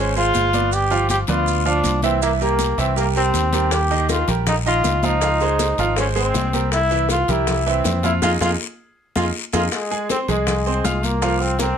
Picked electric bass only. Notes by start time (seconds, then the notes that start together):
Already playing: G#1
0.35 G1
1.28 D2
1.85 C2
2.78 C2
3.34 D#2
4.28 A#1
4.84 C#2
5.78 G#1
6.35 C2
7.28 C2
7.85 F2
8.22 F2
8.41 F2
9.16 F2
9.53 F2
10.28 C2
10.85 C2